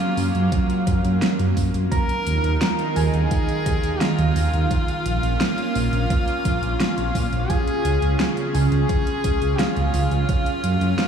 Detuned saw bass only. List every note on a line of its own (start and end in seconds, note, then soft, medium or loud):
0.17 0.30 F#2 loud
0.35 0.47 F#2 medium
0.87 1.00 F#2 medium
1.05 1.17 F#2 medium
1.39 1.52 F#2 medium
1.57 1.70 F#2 medium
1.74 1.87 F#2 medium
2.27 2.39 D#2 medium
2.44 2.57 D#2 medium
2.96 3.09 D#2 loud
3.14 3.27 D#2 medium
3.66 3.79 D#2 loud
3.84 3.96 D#2 medium
4.19 4.31 D#2 medium
4.36 4.49 D#2 medium
4.54 4.66 D#2 medium
5.06 5.19 A#1 medium
5.23 5.36 A#1 medium
5.76 5.88 A#1 medium
5.93 6.06 A#1 medium
6.45 6.58 A#1 loud
6.63 6.75 A#1 medium
6.98 7.10 A#1 medium
7.15 7.28 A#2 medium
7.32 7.45 A#1 medium
7.85 7.98 C#2 medium
8.02 8.15 C#2 medium
8.55 8.67 C#2 medium
8.72 8.85 C#2 medium
9.24 9.37 C#2 loud
9.42 9.55 C#2 medium
9.77 9.89 C#2 medium
9.94 10.07 C#2 loud
10.12 10.24 C#2 medium
10.64 10.77 F#2 medium
10.81 10.94 F#2 medium